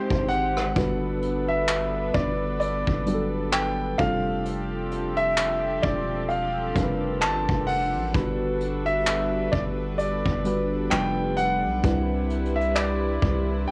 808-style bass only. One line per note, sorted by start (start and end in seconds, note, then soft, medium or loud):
0.11 0.74 G#1 medium
0.76 2.11 G1 loud
2.15 2.85 G1 loud
2.87 3.95 G1 loud
3.99 5.80 F1 loud
5.84 6.72 E1 loud
6.76 7.24 F1 loud
7.22 7.48 G1 loud
7.49 7.97 F1 loud
7.95 8.14 A1 loud
8.15 9.49 G1 loud
9.53 10.23 G1 loud
10.26 10.89 G1 loud
10.92 11.67 F1 loud
11.65 11.83 B1 loud
11.84 13.18 C2 loud
13.22 13.67 C2 loud